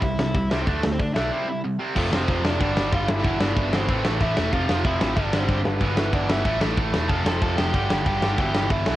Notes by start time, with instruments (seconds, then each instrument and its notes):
Already playing: overdriven electric guitar E4 E5
0.02 picked electric bass C2, distorted electric guitar C3 G3, kick, open hi-hat
0.18 picked electric bass C2, distorted electric guitar C3 G3, snare
0.34 picked electric bass C2, distorted electric guitar C3 G3, kick, open hi-hat
0.50 picked electric bass C2, distorted electric guitar C3 G3 C4, overdriven electric guitar E4 E5, snare
0.59 overdriven electric guitar C4 C5
0.66 picked electric bass D2, distorted electric guitar D3 A3 D4, overdriven electric guitar A3 A4, kick, open hi-hat
0.83 picked electric bass D2, distorted electric guitar D3 A3, snare
0.92 overdriven electric guitar C4 C5
0.99 picked electric bass D2, distorted electric guitar D3 A3, overdriven electric guitar D4 D5, kick, open hi-hat
1.14 picked electric bass B1, distorted electric guitar D3 A3 D4, overdriven electric guitar E4 E5, snare
1.31 distorted electric guitar C3 G3 C4
1.48 distorted electric guitar C3 G3
1.64 distorted electric guitar C3 G3
1.79 distorted electric guitar C3 G3 C4
1.96 picked electric bass F1, distorted electric guitar F2 C3 F3, overdriven electric guitar A3 A4, kick, crash
2.12 picked electric bass F1, distorted electric guitar F2 C3 F3, overdriven electric guitar C4 C5, snare
2.28 picked electric bass F1, distorted electric guitar F2 C3 F3, kick, crash
2.44 picked electric bass F1, distorted electric guitar F2 C3 F3, overdriven electric guitar D4 D5, snare
2.60 picked electric bass G1, distorted electric guitar G2 D3 G3, kick, crash
2.76 picked electric bass G1, distorted electric guitar G2 D3 G3, snare
2.92 picked electric bass G1, distorted electric guitar G2 D3 G3, overdriven electric guitar F4 F5, kick, crash
3.08 picked electric bass G1, distorted electric guitar G2 D3 G3, overdriven electric guitar E4 E5, snare
3.24 picked electric bass G1, distorted electric guitar E2 B2 E3, kick, crash
3.40 picked electric bass G1, distorted electric guitar E2 B2 E3, overdriven electric guitar D4 D5, snare
3.56 picked electric bass G1, distorted electric guitar E2 B2 E3, kick, crash
3.73 picked electric bass G1, distorted electric guitar E2 B2 E3, overdriven electric guitar C4 C5, snare
3.88 picked electric bass A1, distorted electric guitar A2 E3 A3, kick, crash
4.05 picked electric bass A1, distorted electric guitar A2 E3 A3, snare
4.21 picked electric bass A1, distorted electric guitar A2 E3 A3, overdriven electric guitar E4 E5, kick, crash
4.37 picked electric bass E1, distorted electric guitar A2 E3 A3, snare
4.53 picked electric bass F1, distorted electric guitar F2 C3 F3, overdriven electric guitar F4 F5, kick, crash
4.69 picked electric bass F1, distorted electric guitar F2 C3 F3, snare
4.85 picked electric bass F1, distorted electric guitar F2 C3 F3, overdriven electric guitar E4 E5, kick, crash
5.01 picked electric bass A1, distorted electric guitar F2 C3 F3, snare
5.16 picked electric bass G1, distorted electric guitar G2 D3 G3, overdriven electric guitar D4 D5, kick, crash
5.33 picked electric bass G1, distorted electric guitar G2 D3 G3, snare
5.40 overdriven electric guitar C4 C5
5.49 picked electric bass G1, distorted electric guitar G2 D3 G3, kick, crash
5.64 picked electric bass G1, distorted electric guitar G2 D3 G3, overdriven electric guitar B3 B4, snare
5.81 picked electric bass G1, distorted electric guitar E2 B2 E3, kick, crash
5.97 picked electric bass G1, distorted electric guitar E2 B2 E3, snare
6.13 picked electric bass G1, distorted electric guitar E2 B2 E3, overdriven electric guitar D4 D5, kick, crash
6.28 picked electric bass G1, distorted electric guitar E2 B2 E3, overdriven electric guitar E4 E5, snare
6.45 picked electric bass A1, distorted electric guitar A2 E3 A3, kick, crash
6.61 picked electric bass A1, distorted electric guitar A2 E3 A3, snare
6.77 picked electric bass A1, distorted electric guitar A2 E3 A3, kick, crash
6.93 picked electric bass E1, distorted electric guitar A2 E3 A3, snare
7.09 picked electric bass F1, distorted electric guitar F2 C3 F3, overdriven electric guitar A4 A5, kick, crash
7.25 picked electric bass F1, distorted electric guitar F2 C3 F3, snare
7.41 picked electric bass F1, distorted electric guitar F2 C3 F3, overdriven electric guitar A4 A5, kick, crash
7.57 picked electric bass F1, distorted electric guitar F2 C3 F3, overdriven electric guitar G4 G5, snare
7.73 picked electric bass G1, distorted electric guitar G2 D3 G3, kick, crash
7.89 picked electric bass G1, distorted electric guitar G2 D3 G3, snare
8.06 picked electric bass G1, distorted electric guitar G2 D3 G3, overdriven electric guitar G4 G5, kick, crash
8.21 picked electric bass G1, distorted electric guitar G2 D3 G3, snare
8.37 picked electric bass G1, distorted electric guitar E2 B2 E3, overdriven electric guitar G4 G5, kick, crash
8.53 picked electric bass G1, distorted electric guitar E2 B2 E3, snare
8.69 picked electric bass G1, distorted electric guitar E2 B2 E3, overdriven electric guitar E4 E5, kick, crash
8.86 picked electric bass B1, distorted electric guitar E2 B2 E3, snare